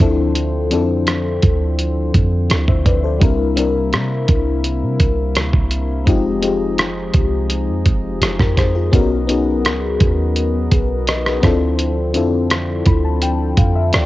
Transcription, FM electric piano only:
0.00 0.63 F3 medium
0.00 0.64 C4 medium
0.00 0.64 D4 medium
0.00 0.65 E4 medium
0.00 0.65 A4 loud
0.70 1.99 F3 medium
0.70 2.00 C4 medium
0.70 2.00 D4 medium
0.70 2.00 E4 medium
0.70 2.01 A4 medium
2.68 2.85 C5 medium
2.68 2.85 E5 medium
2.86 3.03 B4 medium
2.86 3.03 D5 medium
3.04 3.38 A4 medium
3.04 3.38 C5 medium
3.19 3.53 G3 medium
3.19 3.53 C4 medium
3.19 3.53 D4 medium
3.19 3.54 E4 medium
3.19 3.54 A#4 medium
3.56 4.85 G3 medium
3.56 4.85 C4 medium
3.56 4.86 D4 medium
3.56 4.86 E4 medium
3.56 4.86 A#4 medium
6.05 6.38 G#3 medium
6.05 6.39 C4 medium
6.05 6.39 D#4 medium
6.05 6.40 F4 medium
6.05 6.40 G4 medium
6.42 7.71 G#3 medium
6.42 7.71 C4 medium
6.42 7.71 D#4 medium
6.42 7.72 F4 medium
6.42 7.72 G4 medium
8.40 8.57 G4 medium
8.40 8.57 A#4 medium
8.58 8.74 G#4 medium
8.58 8.74 C5 medium
8.75 9.09 F4 medium
8.75 9.09 G#4 medium
8.91 9.24 B3 medium
8.91 9.25 C#4 medium
8.91 9.25 D#4 medium
8.91 9.26 F#4 medium
8.91 9.26 A#4 loud
9.27 10.56 B3 medium
9.27 10.57 C#4 medium
9.27 10.57 D#4 medium
9.27 10.58 F#4 medium
9.27 10.58 G#4 medium
10.72 11.06 G#4 medium
10.72 11.06 B4 medium
11.08 11.25 B4 medium
11.08 11.25 D#5 medium
11.26 11.60 G#4 medium
11.26 11.60 B4 medium
11.42 12.06 C4 medium
11.42 12.07 D4 medium
11.42 12.07 E4 medium
11.42 12.08 F4 medium
11.42 12.08 A4 loud
12.13 13.42 C4 medium
12.13 13.43 D4 medium
12.13 13.43 E4 medium
12.13 13.44 F4 medium
12.13 13.44 A4 medium
12.86 13.03 B5 medium
13.04 13.21 A5 medium
13.22 13.55 G5 medium
13.58 13.74 F5 medium
13.76 13.92 E5 medium
13.94 14.06 D5 medium

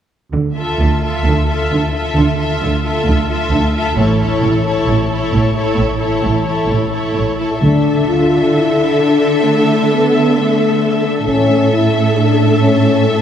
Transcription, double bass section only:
0.33 0.72 D2 soft
0.80 1.19 D2 soft
1.25 1.64 D2 soft
1.72 2.10 D2 soft
2.16 2.54 D2 soft
2.62 3.00 D2 soft
3.07 3.45 D2 medium
3.53 3.90 D2 soft
3.98 4.36 A1 medium
4.43 4.81 A1 medium
4.88 5.26 A1 medium
5.34 5.72 A1 medium
5.79 6.17 A1 soft
6.24 6.62 A1 soft
6.70 7.08 A1 soft
7.16 7.55 A1 soft
7.62 8.05 D2 soft
11.27 11.69 A1 soft

